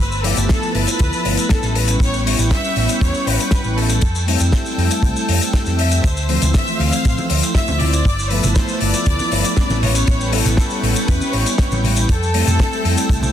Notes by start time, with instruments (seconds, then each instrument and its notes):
Already playing: violin section B4, analog synth pad E6
0.00 fingered electric bass G1, analog synth pad B4 A5
0.12 shaker
0.23 analog polysynth F3 A3 B3 E4, violin section G4, open hi-hat
0.37 fingered electric bass G1, closed hi-hat, shaker
0.49 violin section A4, kick, snare, closed hi-hat, shaker
0.63 shaker
0.74 fingered electric bass G1, violin section B4, open hi-hat
0.87 closed hi-hat, shaker
0.99 fingered electric bass D2, kick, closed hi-hat, shaker
1.13 shaker
1.25 fingered electric bass G1, open hi-hat
1.37 closed hi-hat, shaker
1.49 analog polysynth G3 B3 C#4 E4, violin section A4, kick, snare, closed hi-hat, shaker
1.63 fingered electric bass A1, snare, shaker
1.75 analog synth pad B4 G5 C#6, violin section B4, open hi-hat
1.88 closed hi-hat, shaker
2.00 fingered electric bass A1, violin section C#5, kick, closed hi-hat, shaker
2.13 shaker
2.25 analog polysynth G3 B3 C#4 E4, violin section C#5, open hi-hat
2.38 fingered electric bass A1, closed hi-hat, shaker
2.51 violin section E5, kick, snare, closed hi-hat, shaker
2.65 shaker
2.76 fingered electric bass A1, open hi-hat
2.89 closed hi-hat, shaker
3.01 fingered electric bass E2, violin section C#5, kick, closed hi-hat, shaker
3.14 shaker
3.27 fingered electric bass A1, violin section B4, open hi-hat
3.40 closed hi-hat, shaker
3.51 analog polysynth G3 B3 C#4 E4, kick, snare, closed hi-hat, shaker
3.64 fingered electric bass A1, shaker
3.78 violin section A4, open hi-hat
3.89 closed hi-hat, shaker
4.01 fingered electric bass F2, analog synth pad A4 G5 E6, kick, closed hi-hat, shaker
4.15 shaker
4.26 analog polysynth G3 A3 C4 E4, open hi-hat
4.40 fingered electric bass F2, closed hi-hat, shaker
4.52 kick, snare, closed hi-hat, shaker
4.66 shaker
4.78 fingered electric bass F2, open hi-hat
4.91 closed hi-hat, shaker
5.03 fingered electric bass C2, kick, closed hi-hat, shaker
5.16 shaker
5.29 fingered electric bass F2, open hi-hat
5.41 closed hi-hat, shaker
5.53 analog polysynth G3 A3 C4 E4, kick, snare, closed hi-hat, shaker
5.66 fingered electric bass F2, snare, shaker
5.78 violin section E5, open hi-hat
5.91 closed hi-hat, shaker
6.03 fingered electric bass D2, violin section C5, analog synth pad C5, kick, closed hi-hat, shaker
6.17 shaker
6.28 analog polysynth E3 F3 A3 C4, violin section C5, open hi-hat
6.42 fingered electric bass D2, closed hi-hat, low conga, shaker
6.54 violin section E5, kick, snare, closed hi-hat, shaker
6.67 shaker
6.80 fingered electric bass D2, violin section F5, open hi-hat
6.92 closed hi-hat, shaker
7.05 fingered electric bass A1, kick, closed hi-hat, shaker
7.18 high conga, shaker
7.30 fingered electric bass D2, open hi-hat
7.43 closed hi-hat, shaker
7.55 analog polysynth F3 A3 C4 E4, violin section E5, kick, snare, closed hi-hat, shaker
7.67 fingered electric bass D2, high conga, shaker
7.80 violin section D5, open hi-hat, low conga
7.93 closed hi-hat, shaker
8.05 fingered electric bass G1, analog synth pad B4 A5, kick, closed hi-hat, shaker
8.19 shaker
8.30 analog polysynth F3 A3 B3 E4, violin section B4, open hi-hat
8.43 fingered electric bass G1, closed hi-hat, low conga, shaker
8.55 violin section C5, kick, snare, closed hi-hat, shaker
8.68 shaker
8.81 fingered electric bass G1, violin section D5, open hi-hat
8.94 closed hi-hat, shaker
9.06 fingered electric bass D2, kick, closed hi-hat, shaker
9.19 high conga, shaker
9.32 fingered electric bass G1, open hi-hat
9.44 closed hi-hat, shaker
9.56 analog polysynth G3 B3 C#4 E4, kick, snare, closed hi-hat, shaker
9.69 fingered electric bass A1, snare, high conga, shaker
9.82 violin section C#5, analog synth pad G5 C#6, open hi-hat, low conga
9.95 closed hi-hat, shaker
10.07 fingered electric bass A1, kick, closed hi-hat, shaker
10.21 shaker
10.31 analog polysynth G3 B3 C#4 E4, violin section A4, open hi-hat
10.45 fingered electric bass A1, closed hi-hat, low conga, shaker
10.57 kick, snare, closed hi-hat, shaker
10.70 shaker
10.83 fingered electric bass A1, violin section A4, open hi-hat
10.96 closed hi-hat, shaker
11.08 fingered electric bass E2, violin section B4, kick, closed hi-hat, shaker
11.20 high conga, shaker
11.33 fingered electric bass A1, violin section C#5, open hi-hat
11.46 closed hi-hat, shaker
11.58 analog polysynth G3 B3 C#4 E4, kick, snare, closed hi-hat, shaker
11.71 fingered electric bass A1, high conga, shaker
11.84 open hi-hat, low conga
11.96 closed hi-hat, shaker
12.09 fingered electric bass F2, analog synth pad A4 E6, violin section A4, kick, closed hi-hat, shaker
12.23 shaker
12.33 analog polysynth G3 A3 C4 E4, open hi-hat
12.47 fingered electric bass F2, closed hi-hat, low conga, shaker
12.60 kick, snare, closed hi-hat, shaker
12.73 shaker
12.85 fingered electric bass F2, open hi-hat
12.97 closed hi-hat, shaker
13.09 fingered electric bass C2, kick, closed hi-hat, shaker
13.22 high conga, low conga, shaker